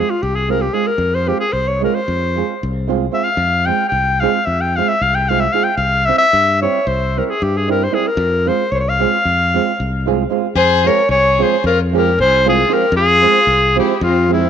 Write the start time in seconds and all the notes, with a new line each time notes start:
Already playing: G#3 C4 F4 G#4
0.00 G#4
0.10 F4
0.22 C2 G4
0.35 G#4
0.48 G#3 C4 F4 G#4 A#4
0.61 G4
0.73 G#3 C4 F4 G#4
0.87 A#4
0.98 F2
1.15 C5
1.27 G#3 C4 F4 G4 G#4
1.40 G#4
1.52 C2 C5
1.68 C#5
1.81 G#3 C4 F4 G#4 A#4
1.95 C5
2.08 F2
2.36 G#3 C4 F4 G#4
2.63 C2
2.88 G#3 C4 F4 G#4
3.11 G#3 C4 F4 G#4 E5
3.24 F5
3.37 F2
3.66 G#3 C4 F4 G#4 G5
3.89 C2 G5
4.20 G#3 C4 F4 G#4 F5
4.46 F2 E5
4.61 G5
4.76 G#3 C4 F4 G#4 F5
4.88 E5
5.01 C2 F5
5.15 G5
5.29 G#3 C4 F4 G#4 F5
5.40 E5
5.53 G#3 C4 F4 G#4 F5
5.64 G5
5.77 C2 F5
6.06 G3 C4 E4 E5
6.10 G4
6.18 E5
6.33 G2
6.62 G3 C4 E4 G4 C#5
6.87 C2 C5
7.16 G3 C4 E4 G4 A#4
7.26 G#4 A#4
7.42 G2 G4
7.57 G#4
7.68 G3 C4 E4 G4 A#4
7.84 C5
7.91 G3 C4 E4 G4 G#4
8.07 A#4
8.17 F2
8.46 G#3 C4 F4 G#4 C5
8.71 C2 C5 C#5
8.80 C#5
8.89 F5
8.99 G#3 C4 F4 G#4
9.25 F2
9.54 G#3 C4 F4 G#4
9.80 C2
10.06 G#3 C4 F4 G#4
10.30 G#3 C4 F4 G#4
10.55 F2 G#4 C5
10.84 F3 G#3 C4 F4 G#4 A#4 C#5
11.09 C2 G#4 C#5
11.39 F3 G#3 C4 F4 G#4 C5
11.64 F2 F4 A#4
11.93 F3 G#3 C4 F4 G4 G#4
11.98 A#4
12.19 C2 G#4 C5
12.45 F3 G#3 C4 F4 G#4
12.49 G#4
12.68 F3 G#3 C4 F4 G#4
12.73 G4 A#4
12.92 F2 F4
12.96 G#4
13.21 F3 G#3 C4 F4 G#4
13.47 C2
13.75 F3 G#3 C4 E4 F4 G4 G#4
14.01 F2 C4 F4
14.28 F3 G#3 C4 F4 G#4
14.33 E4